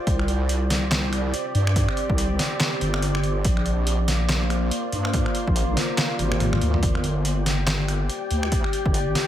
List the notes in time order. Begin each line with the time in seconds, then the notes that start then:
Already playing: D5
0.07 C2 C4 G4 D5, kick, closed hi-hat
0.19 finger snap
0.28 closed hi-hat
0.49 closed hi-hat
0.70 snare, open hi-hat
0.91 snare, clap, closed hi-hat
1.13 finger snap, closed hi-hat
1.34 closed hi-hat
1.55 G2, closed hi-hat
1.67 finger snap
1.76 kick, closed hi-hat
1.89 finger snap
1.97 closed hi-hat
2.10 C2, kick
2.18 closed hi-hat
2.39 snare, open hi-hat
2.60 finger snap, snare, clap, closed hi-hat
2.81 G1, closed hi-hat
2.94 finger snap
3.02 closed hi-hat
3.15 finger snap
3.23 closed hi-hat
3.44 A#1 A#3 F4 C5, kick, closed hi-hat
3.57 finger snap
3.66 closed hi-hat
3.87 closed hi-hat
4.08 snare, open hi-hat
4.29 snare, clap, closed hi-hat
4.50 finger snap, closed hi-hat
4.71 closed hi-hat
4.92 G2, closed hi-hat
5.05 finger snap
5.13 kick, closed hi-hat
5.26 finger snap
5.35 closed hi-hat
5.47 A#1, kick
5.56 closed hi-hat
5.77 snare, open hi-hat
5.98 finger snap, snare, clap, closed hi-hat, swell
6.19 G#1, closed hi-hat, high tom
6.32 finger snap, high tom
6.40 closed hi-hat, mid tom
6.53 finger snap, mid tom
6.61 D2, closed hi-hat
6.74 mid tom
6.83 G1 G4 D5 G5, kick, closed hi-hat
6.95 finger snap
7.04 closed hi-hat
7.25 closed hi-hat
7.46 snare, open hi-hat
7.67 snare, clap, closed hi-hat
7.88 finger snap, closed hi-hat
8.09 closed hi-hat
8.31 D2, closed hi-hat
8.43 finger snap
8.52 kick, closed hi-hat
8.64 finger snap
8.73 closed hi-hat
8.86 G1, kick
8.94 closed hi-hat
9.15 snare, open hi-hat